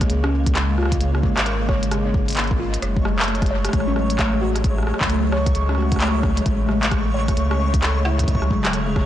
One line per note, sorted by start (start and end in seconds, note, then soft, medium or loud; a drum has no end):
0.00 2.79 C#3 medium
0.00 8.24 G#3 medium
0.00 2.79 A#3 medium
0.00 9.06 C#5 medium
0.00 kick loud
0.00 cross-stick medium
0.00 closed hi-hat medium
0.10 1.29 C#2 loud
0.10 0.23 G#3 medium
0.10 closed hi-hat medium
0.24 0.32 C#4 loud
0.24 cross-stick medium
0.32 0.46 A#3 medium
0.46 kick loud
0.46 closed hi-hat medium
0.55 0.69 A#3 medium
0.55 cross-stick medium
0.55 clap loud
0.55 closed hi-hat medium
0.69 0.78 G#3 medium
0.78 0.88 F4 loud
0.78 cross-stick soft
0.83 cross-stick soft
0.85 cross-stick medium
0.92 kick loud
0.92 closed hi-hat medium
1.01 1.14 G#3 medium
1.01 closed hi-hat medium
1.15 cross-stick medium
1.23 1.34 G#3 loud
1.23 kick loud
1.37 2.77 G#1 medium
1.37 cross-stick medium
1.37 clap loud
1.37 closed hi-hat medium
1.46 1.56 A#3 loud
1.46 closed hi-hat medium
1.60 1.68 G#3 medium
1.69 1.79 C#5 loud
1.69 kick loud
1.69 cross-stick medium
1.83 closed hi-hat medium
1.91 2.05 G#3 medium
1.91 cross-stick medium
1.91 closed hi-hat medium
2.05 2.14 C#4 loud
2.14 2.28 A#3 medium
2.14 kick loud
2.28 closed hi-hat medium
2.30 closed hi-hat soft
2.33 closed hi-hat soft
2.35 2.50 A#3 medium
2.35 clap loud
2.35 closed hi-hat soft
2.37 closed hi-hat medium
2.44 closed hi-hat soft
2.47 2.59 G#3 medium
2.47 kick loud
2.47 closed hi-hat soft
2.60 2.70 F4 loud
2.74 closed hi-hat medium
2.82 3.68 F#1 loud
2.82 6.42 F#3 medium
2.82 2.96 G#3 medium
2.82 9.06 A3 medium
2.82 cross-stick soft
2.82 closed hi-hat medium
2.97 kick loud
3.05 3.15 G#3 loud
3.05 cross-stick medium
3.19 clap loud
3.24 closed hi-hat medium
3.28 3.38 A3 loud
3.28 closed hi-hat soft
3.35 closed hi-hat soft
3.42 3.50 G#3 medium
3.42 kick loud
3.42 cross-stick soft
3.42 closed hi-hat soft
3.46 closed hi-hat soft
3.51 3.61 C#5 loud
3.65 cross-stick medium
3.65 closed hi-hat medium
3.69 cross-stick medium
3.73 4.93 A1 medium
3.73 3.87 G#3 medium
3.73 kick loud
3.73 cross-stick soft
3.73 closed hi-hat medium
3.80 cross-stick soft
3.87 3.96 C#4 loud
3.96 4.10 A3 medium
3.96 cross-stick medium
4.10 closed hi-hat medium
4.19 4.32 A3 medium
4.19 kick loud
4.19 cross-stick medium
4.19 clap loud
4.19 closed hi-hat soft
4.33 4.41 G#3 medium
4.41 4.52 F#4 loud
4.56 cross-stick soft
4.56 closed hi-hat medium
4.64 4.78 G#3 medium
4.64 kick loud
4.64 closed hi-hat medium
4.78 cross-stick soft
4.83 cross-stick soft
4.87 4.97 G#3 loud
4.87 cross-stick soft
4.94 cross-stick medium
5.01 6.41 C#2 medium
5.01 kick loud
5.01 clap loud
5.10 5.20 A3 loud
5.10 closed hi-hat soft
5.24 5.32 G#3 medium
5.32 5.43 C#5 loud
5.32 cross-stick medium
5.46 kick loud
5.46 closed hi-hat medium
5.55 5.68 G#3 medium
5.55 closed hi-hat soft
5.69 5.77 C#4 loud
5.69 cross-stick soft
5.75 5.88 F#4 loud
5.75 cross-stick soft
5.82 cross-stick soft
5.92 kick loud
5.92 closed hi-hat medium
5.96 cross-stick soft
6.00 6.11 A3 medium
6.00 cross-stick medium
6.00 clap loud
6.00 closed hi-hat medium
6.07 cross-stick medium
6.15 6.21 G#3 medium
6.23 6.34 C#4 medium
6.23 kick loud
6.23 cross-stick soft
6.37 6.41 G#3 loud
6.37 closed hi-hat medium
6.46 7.32 A1 loud
6.46 9.06 C#3 medium
6.46 6.60 G#3 medium
6.46 kick loud
6.46 closed hi-hat soft
6.69 6.79 G#3 loud
6.69 cross-stick soft
6.83 clap loud
6.83 closed hi-hat medium
6.91 7.02 A3 loud
6.91 kick loud
6.91 cross-stick medium
6.91 closed hi-hat soft
7.06 7.14 G#3 medium
7.14 7.25 C#5 loud
7.28 kick loud
7.28 cross-stick soft
7.28 closed hi-hat medium
7.37 8.56 C#2 medium
7.37 7.47 A3 medium
7.37 closed hi-hat medium
7.51 7.59 C#4 loud
7.51 cross-stick medium
7.60 7.73 A3 medium
7.74 kick loud
7.74 closed hi-hat medium
7.83 7.96 A3 medium
7.83 cross-stick soft
7.83 clap loud
7.83 closed hi-hat soft
7.97 8.05 G#3 medium
8.05 8.16 E4 loud
8.05 cross-stick medium
8.19 kick medium
8.19 closed hi-hat medium
8.24 kick medium
8.28 9.06 F#3 medium
8.28 8.41 G#3 medium
8.28 kick medium
8.28 closed hi-hat soft
8.35 kick medium
8.42 cross-stick medium
8.51 8.61 G#3 loud
8.51 kick loud
8.65 9.06 E1 medium
8.65 cross-stick medium
8.65 clap loud
8.65 closed hi-hat medium
8.73 8.84 A3 loud
8.73 closed hi-hat soft
8.88 8.96 G#3 medium
8.96 9.06 C#5 loud
8.96 kick loud
8.96 cross-stick medium